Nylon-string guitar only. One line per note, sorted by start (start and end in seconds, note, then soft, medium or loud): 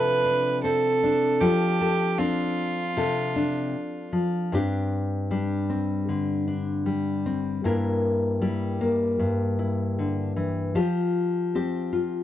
0.00 1.41 C3 medium
0.00 1.40 F3 medium
0.00 0.63 C4 medium
0.00 0.24 D4 medium
0.00 0.63 A4 medium
0.25 1.03 D4 medium
0.64 2.18 C4 medium
0.64 1.41 C5 medium
1.03 2.18 D4 medium
1.41 4.11 F3 medium
1.41 1.80 A4 medium
1.81 2.96 A4 medium
2.19 4.48 C4 medium
2.19 3.35 D4 medium
2.97 3.75 C3 medium
2.97 4.48 A4 medium
3.36 4.52 D4 medium
4.13 4.52 F3 medium
4.52 7.63 G2 medium
4.52 5.69 C4 medium
4.52 5.30 D4 medium
4.52 7.65 G4 medium
5.31 6.86 G3 medium
5.31 6.46 D4 medium
5.70 7.25 C4 soft
6.09 7.60 D3 medium
6.48 7.64 D4 medium
6.86 8.41 G3 medium
7.26 7.65 C4 medium
7.64 9.18 G2 medium
7.64 8.80 A#3 medium
7.64 8.41 E4 medium
7.64 10.72 A#4 medium
8.41 10.71 G3 medium
8.41 9.58 E4 medium
8.81 10.76 A#3 medium
9.19 10.75 G2 medium
9.59 10.71 E4 medium
9.99 10.36 D3 medium
10.36 10.76 E3 medium
10.75 12.23 F3 medium
10.75 11.92 F4 medium
10.75 11.54 G4 medium
11.55 12.23 C4 medium
11.55 12.23 G4 medium
11.93 12.23 F4 medium